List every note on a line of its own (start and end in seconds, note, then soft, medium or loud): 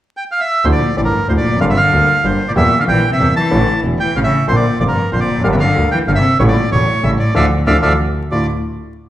0.17 0.24 G5 medium
0.32 0.40 F5 medium
0.40 0.65 E5 medium
0.64 0.79 D2 medium
0.64 0.68 A2 soft
0.64 0.78 D3 medium
0.64 0.78 F3 soft
0.64 0.79 A3 soft
0.64 0.79 E4 medium
0.64 0.68 C5 medium
0.72 0.96 A#2 medium
0.72 0.96 D5 medium
0.97 1.11 A1 soft
0.97 1.11 A2 soft
0.97 1.01 A2 soft
0.97 1.10 D3 soft
0.97 1.11 F3 soft
0.97 1.11 A3 soft
0.97 1.11 E4 soft
0.97 1.01 D5 medium
1.05 1.27 G2 medium
1.05 1.27 A#4 medium
1.28 1.42 D2 soft
1.28 1.43 D2 soft
1.28 1.33 A2 medium
1.28 1.42 D3 soft
1.28 1.42 F3 soft
1.28 1.43 A3 soft
1.28 1.43 E4 soft
1.28 1.33 C5 medium
1.37 1.60 A#2 medium
1.37 1.60 D5 medium
1.45 1.60 F1 soft
1.49 1.53 E2 soft
1.49 1.57 F2 soft
1.57 1.74 G1 medium
1.57 1.61 F#2 soft
1.57 1.74 G2 medium
1.57 1.74 D3 medium
1.57 1.74 G3 soft
1.57 1.74 A#3 soft
1.57 1.74 F4 medium
1.57 1.65 F5 medium
1.62 1.65 D3 medium
1.70 1.77 C3 soft
1.70 1.78 E5 medium
1.77 2.22 D3 medium
1.77 2.26 F5 medium
1.92 2.06 D2 soft
1.92 2.06 D3 soft
1.92 2.06 G3 soft
1.92 2.06 A#3 soft
1.92 2.06 F4 soft
2.24 2.38 G1 soft
2.24 2.38 G2 soft
2.24 2.47 G2 medium
2.24 2.38 D3 soft
2.24 2.38 G3 soft
2.24 2.38 A#3 soft
2.24 2.38 F4 soft
2.24 2.50 C5 medium
2.48 2.52 A#2 medium
2.48 2.52 D5 medium
2.56 2.69 E2 medium
2.56 2.70 E2 medium
2.56 2.78 A#2 medium
2.56 2.70 E3 medium
2.56 2.69 G3 soft
2.56 2.70 A#3 medium
2.56 2.70 G4 medium
2.56 2.79 E5 medium
2.80 2.83 D3 medium
2.80 2.84 F5 medium
2.87 3.01 A#1 soft
2.87 3.02 A#1 medium
2.87 3.01 A#2 soft
2.87 3.01 E3 soft
2.87 3.10 E3 medium
2.87 3.01 G3 soft
2.87 3.01 A#3 soft
2.87 3.02 G4 soft
2.87 3.10 G5 medium
3.12 3.34 C3 medium
3.12 3.35 E5 medium
3.20 3.33 E2 soft
3.20 3.34 E2 medium
3.20 3.33 E3 soft
3.20 3.33 G3 soft
3.20 3.33 A#3 soft
3.20 3.33 G4 soft
3.36 3.80 E3 medium
3.36 3.80 A5 medium
3.51 3.65 A1 medium
3.51 3.65 A2 medium
3.51 3.65 D3 medium
3.51 3.65 E3 soft
3.51 3.65 A3 soft
3.51 3.65 E4 medium
3.83 3.97 E1 soft
3.83 3.97 E2 soft
3.83 3.97 D3 soft
3.83 3.97 E3 soft
3.83 3.97 A3 soft
3.83 3.97 E4 soft
4.00 4.15 E3 medium
4.00 4.16 G5 medium
4.16 4.29 A1 soft
4.16 4.30 A1 soft
4.16 4.30 A2 soft
4.16 4.29 C#3 soft
4.16 4.20 C#3 medium
4.16 4.29 E3 soft
4.16 4.30 A3 soft
4.16 4.30 E4 soft
4.16 4.20 F5 medium
4.24 4.47 C#3 medium
4.24 4.46 E5 medium
4.48 4.62 A#1 medium
4.48 4.56 F2 medium
4.48 4.62 A#2 medium
4.48 4.61 D3 medium
4.48 4.61 F3 soft
4.48 4.62 A#3 soft
4.48 4.62 F4 medium
4.48 4.56 C5 medium
4.56 4.79 A#2 soft
4.56 4.79 D5 medium
4.80 4.94 F1 soft
4.80 4.94 F2 soft
4.80 4.84 A#2 soft
4.80 4.94 D3 soft
4.80 4.94 F3 soft
4.80 4.94 A#3 soft
4.80 4.94 F4 soft
4.80 4.84 D5 medium
4.88 5.11 G2 medium
4.88 5.10 A#4 medium
5.12 5.26 A#1 soft
5.12 5.20 F2 medium
5.12 5.26 A#2 soft
5.12 5.25 D3 soft
5.12 5.26 F3 soft
5.12 5.26 A#3 soft
5.12 5.26 F4 soft
5.12 5.20 C5 medium
5.20 5.43 A#2 medium
5.20 5.43 D5 medium
5.28 5.43 F1 soft
5.28 5.36 E2 soft
5.36 5.40 F2 soft
5.36 5.44 F#2 soft
5.44 5.57 G1 medium
5.44 5.58 G2 medium
5.44 5.57 D3 medium
5.44 5.48 D3 medium
5.44 5.57 G3 soft
5.44 5.58 A#3 soft
5.44 5.58 G4 medium
5.44 5.47 F5 medium
5.52 5.57 C3 medium
5.52 5.56 E5 medium
5.60 5.90 D3 medium
5.60 5.90 F5 medium
5.76 5.89 D2 soft
5.76 5.90 D2 soft
5.76 5.89 D3 soft
5.76 5.89 G3 soft
5.76 5.89 A#3 soft
5.76 5.90 G4 soft
5.91 6.00 E3 medium
5.91 5.99 G5 medium
6.08 6.21 G1 medium
6.08 6.21 G1 soft
6.08 6.21 G2 soft
6.08 6.21 D3 soft
6.08 6.12 D3 medium
6.08 6.21 G3 soft
6.08 6.21 A#3 soft
6.08 6.22 G4 soft
6.08 6.11 F5 medium
6.15 6.39 C3 medium
6.15 6.38 E5 medium
6.39 6.53 A1 medium
6.39 6.53 A2 medium
6.39 6.44 A2 medium
6.39 6.53 C#3 medium
6.39 6.53 G3 medium
6.39 6.53 A3 medium
6.39 6.53 E4 medium
6.39 6.43 C#5 medium
6.48 6.71 A#2 medium
6.48 6.70 D5 medium
6.72 6.85 E1 soft
6.72 6.85 E2 soft
6.72 7.02 A2 medium
6.72 6.85 C#3 soft
6.72 6.85 G3 soft
6.72 6.85 A3 soft
6.72 6.85 E4 soft
6.72 7.05 C#5 medium
7.03 7.17 A1 soft
7.03 7.17 A2 soft
7.03 7.17 C#3 soft
7.03 7.11 C#3 medium
7.03 7.17 G3 soft
7.03 7.17 A3 soft
7.03 7.17 E4 soft
7.03 7.11 E5 medium
7.19 7.34 A2 soft
7.19 7.34 D5 medium
7.35 7.47 D2 medium
7.35 7.45 D3 medium
7.35 7.45 E3 medium
7.35 7.45 F3 medium
7.35 7.46 D5 medium
7.35 7.46 E5 medium
7.35 7.45 F5 medium
7.66 7.79 D2 medium
7.66 7.77 D3 medium
7.66 7.77 E3 medium
7.66 7.77 F3 medium
7.66 7.77 D5 medium
7.66 7.77 E5 medium
7.66 7.77 F5 medium
7.82 7.95 D2 medium
7.82 7.93 D3 medium
7.82 7.93 E3 medium
7.82 7.93 F3 medium
7.82 7.93 D5 medium
7.82 7.93 E5 medium
7.82 7.93 F5 medium
8.31 8.45 D2 soft
8.31 8.47 A2 medium
8.31 8.45 D4 soft
8.31 8.45 E4 soft
8.31 8.45 F4 soft
8.31 8.47 D5 medium